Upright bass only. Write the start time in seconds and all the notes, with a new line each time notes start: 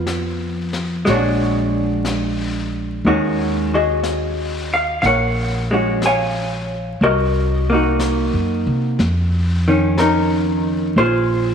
Already playing: F2
1.07 A#1
3.05 D#2
5.03 A#1
7.01 C2
8.34 F#2
8.66 C3
8.99 F2
10.96 A#1